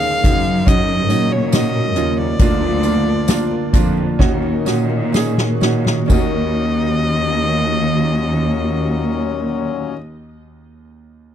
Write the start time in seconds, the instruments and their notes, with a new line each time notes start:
Already playing: grand piano A#2 C#4 D#4 F#4 G#4, ambient pad C#3 F#3 D#4, nylon-string guitar D#3 D#5, french horn section G#3 G#4, violin F5
0.03 nylon-string guitar A#4
0.24 cello section F#2, grand piano C#4 D#4 F#4, nylon-string guitar D#5, kick, closed hi-hat, tambourine
0.46 nylon-string guitar F#4
0.66 nylon-string guitar D#3, grand piano C#4 D#4 F#4, violin D#5, kick, closed hi-hat
0.88 nylon-string guitar A#4
1.09 cello section A#2, french horn section F#3 F#4, grand piano C#4 D#4 F#4, nylon-string guitar D#5, closed hi-hat, tambourine
1.32 nylon-string guitar A#4, violin C#5
1.52 grand piano C#4 D#4 F#4, nylon-string guitar D#5, violin D#5, snare, closed hi-hat, tambourine
1.74 nylon-string guitar A#4
1.96 cello section D#2, grand piano C#4 D#4 F4, nylon-string guitar D#5, closed hi-hat
2.18 nylon-string guitar F#4, violin D5
2.39 cello section D2, ambient pad D3 A#3 F4, grand piano D3 A#3 D4 F4, french horn section F3 F4, nylon-string guitar D4, kick, closed hi-hat, tambourine
2.62 nylon-string guitar A#4
2.83 grand piano A#3 D4 F4, nylon-string guitar D5, closed hi-hat, tambourine
3.06 nylon-string guitar A#4
3.28 grand piano A#3 D4 F4, nylon-string guitar D5, snare, closed hi-hat, tambourine
3.51 nylon-string guitar A#4
3.73 cello section F2, grand piano A#3 D4 F4, nylon-string guitar D5, kick, closed hi-hat, tambourine
3.97 nylon-string guitar F4
4.19 cello section D#2, grand piano A#2 C#4 D#4 F#4, ambient pad D#3 C#4 F#4, nylon-string guitar D#3, french horn section D#3 D#4, kick, snare
4.43 nylon-string guitar A#4
4.65 cello section A#2, grand piano C#4 D#4 F#4, nylon-string guitar D#5, snare, tambourine
4.89 nylon-string guitar A#4
5.13 grand piano C#4 D#4 G#4, nylon-string guitar D#5, snare, tambourine
5.37 nylon-string guitar A#4, snare
5.61 cello section A#2, grand piano C#4 D#4 F#4, nylon-string guitar D#5, snare, tambourine
5.84 nylon-string guitar F#4, snare
6.06 nylon-string guitar D#3 A#3 C#4, ambient pad D#3 C#4 F#4, grand piano C#4, violin D#5, kick, crash, tambourine
6.10 cello section D#2, grand piano D#2 D#4, french horn section A#2 F#3 C#4, nylon-string guitar F#4 A#4 D#5
6.14 grand piano F#4